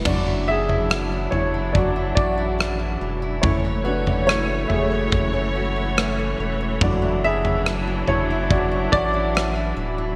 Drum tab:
CC |x---------------|----------------|----------------|
SD |----r-------r---|----r-------r---|----r-------r---|
FT |o--o--o-o-------|o--o--o-o-------|o--o--o-o-------|
BD |o-------o-o-----|o-------o-------|o-------o-o-----|